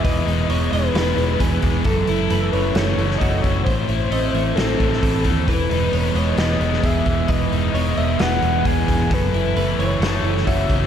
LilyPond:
<<
  \new Staff \with { instrumentName = "Soft synth lead" } { \time 4/4 \key e \major \tempo 4 = 132 dis''4. b'2 r8 | a'4. b'8 cis''4 dis''8 cis''8 | c''2 a'4. r8 | b'4. cis''8 dis''4 e''4 |
dis''4. e''8 fis''4 gis''4 | b'4. cis''8 cis''4 e''4 | }
  \new Staff \with { instrumentName = "Clean electric guitar" } { \time 4/4 \key e \major b'4 cis''8 dis''8 b'4 gis'4 | a'4 b'8 cis''8 a'4 fis'4 | c''4 dis''8 e''8 c''4 a'4 | b'4 cis''8 dis''8 b'4 gis'4 |
b'4 cis''8 dis''8 b'4 gis'4 | a'4 b'8 cis''8 a'4 fis'4 | }
  \new Staff \with { instrumentName = "Clean electric guitar" } { \clef bass \time 4/4 \key e \major <e gis b>8 gis8 b8 gis8 e8 gis8 b8 e8 | fis,8 e8 a8 e8 cis8 e8 a8 cis8 | a,8 a8 c'8 a8 e8 a8 c'8 e8 | e8 gis8 b8 gis8 e8 gis8 b8 e8 |
e8 gis8 b8 gis8 e8 gis8 b8 e8 | fis,8 e8 a8 e8 cis8 e8 a8 cis8 | }
  \new Staff \with { instrumentName = "Overdriven electric guitar" } { \clef bass \time 4/4 \key e \major <e gis b>8 dis'8 gis8 e8 b8 gis8 e8 gis8 | fis,8 e'8 e8 cis8 a8 e8 cis8 e8 | a,8 e'8 a8 e8 c'8 a8 e8 a8 | e8 dis'8 gis8 e8 b8 gis8 e8 gis8 |
e8 dis'8 gis8 e8 b8 gis8 e8 gis8 | fis,8 e'8 e8 cis8 a8 e8 cis8 e8 | }
  \new Staff \with { instrumentName = "Fingered electric bass" } { \clef bass \time 4/4 \key e \major e,,8 e,,8 e,,8 e,,8 e,,8 e,,8 e,,8 e,,8 | fis,,8 fis,,8 fis,,8 fis,,8 fis,,8 fis,,8 fis,,8 fis,,8 | a,,8 a,,8 a,,8 a,,8 a,,8 a,,8 a,,8 dis,8 | e,,8 e,,8 e,,8 e,,8 e,,8 e,,8 e,,8 e,,8 |
e,,8 e,,8 e,,8 e,,8 e,,8 e,,8 e,,8 e,,8 | fis,,8 fis,,8 fis,,8 fis,,8 fis,,8 fis,,8 fis,,8 fis,,8 | }
  \new DrumStaff \with { instrumentName = "Drums" } \drummode { \time 4/4 <hho bd>8 hho8 hho8 hho8 <hho sn>8 hho8 <hho bd>8 <hho bd>8 | <hho bd>8 hho8 hho8 hho8 <hho sn>8 hho16 sn16 <hho bd>8 <hho bd>8 | <hho bd>8 hho8 hho8 hho8 <hho sn>8 <hho bd>16 sn16 <hho bd>8 <hho bd>8 | <hho bd>8 hho8 hho8 hho8 <hho sn>8 hho16 sn16 <hho bd>8 <hho bd>8 |
<hho bd>8 hho8 hho8 hho8 <hho sn>8 hho8 <hho bd>8 <hho bd>8 | <hho bd>8 hho8 hho8 hho8 <hho sn>8 hho16 sn16 <hho bd>8 <hho bd>8 | }
>>